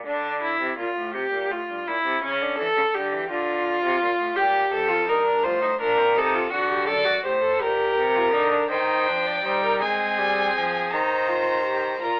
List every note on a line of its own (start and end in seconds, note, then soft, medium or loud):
0.06 0.59 D3 medium
0.06 0.40 D4 medium
0.42 0.78 E4 medium
0.60 0.77 C3 medium
0.78 0.95 A#2 medium
0.78 1.14 F4 medium
0.95 1.15 A2 medium
1.14 1.31 C3 medium
1.14 1.53 G4 medium
1.31 1.52 A#2 medium
1.50 1.68 A2 medium
1.50 1.89 F4 medium
1.69 1.86 G2 medium
1.87 1.94 A#2 medium
1.87 2.23 E4 medium
2.05 2.22 C3 medium
2.23 2.43 C#3 medium
2.23 2.57 C#4 medium
2.41 2.59 D3 medium
2.58 2.67 E3 medium
2.58 2.96 A4 medium
2.77 2.84 C#3 medium
2.94 3.14 D3 medium
2.94 3.29 G4 medium
3.13 3.29 E3 medium
3.30 3.82 D3 medium
3.30 4.38 F4 loud
3.84 4.00 C3 medium
4.02 4.09 A#2 medium
4.19 4.36 A2 medium
4.36 4.71 A#2 medium
4.36 4.90 G4 medium
4.36 4.69 G4 medium
4.73 5.10 F2 medium
4.73 5.10 A4 medium
4.88 5.07 F4 medium
5.08 5.46 G2 medium
5.08 5.24 D#4 medium
5.08 5.45 A#4 medium
5.25 5.45 D4 medium
5.43 5.80 A2 medium
5.43 5.61 F4 medium
5.43 5.79 C5 medium
5.62 5.69 D#4 medium
5.79 6.18 A#2 medium
5.79 5.99 D4 medium
5.79 6.19 A#4 medium
5.98 6.15 C4 medium
6.15 6.51 C3 medium
6.15 6.35 D#4 medium
6.15 6.52 A4 medium
6.34 6.52 F4 medium
6.50 6.89 D3 medium
6.50 6.69 F#4 medium
6.50 6.87 F#4 medium
6.70 6.89 G4 medium
6.87 7.23 F#2 medium
6.87 7.06 A4 medium
6.87 7.23 D5 medium
7.05 7.23 F#4 medium
7.24 7.59 A2 medium
7.24 7.32 G4 medium
7.24 7.63 C5 medium
7.42 7.61 A4 medium
7.60 7.96 A#2 medium
7.60 8.17 G4 medium
7.60 8.70 A#4 medium
7.97 8.34 C3 medium
8.15 8.32 F4 medium
8.32 8.68 D3 medium
8.32 8.53 D#4 medium
8.51 8.69 D4 medium
8.69 9.09 D#3 medium
8.69 9.09 D#4 medium
8.69 9.28 C5 medium
8.69 9.76 G5 medium
9.07 9.43 F3 medium
9.07 9.44 D4 medium
9.26 9.47 D5 medium
9.44 9.82 G3 medium
9.44 9.83 D#4 medium
9.44 9.63 C5 medium
9.64 9.81 A#4 medium
9.81 10.20 G#3 medium
9.81 10.92 C4 medium
9.81 10.95 G#4 medium
9.81 10.90 G#5 medium
10.18 10.55 G3 medium
10.56 10.94 F3 medium
10.92 12.01 D#3 medium
10.92 11.29 D#4 medium
10.92 12.05 C5 medium
10.92 12.00 A#5 medium
11.28 11.63 F4 medium
11.63 12.00 G4 medium
12.00 12.20 A#2 soft
12.00 12.20 F4 medium
12.00 12.20 A#4 medium
12.00 12.20 A#5 medium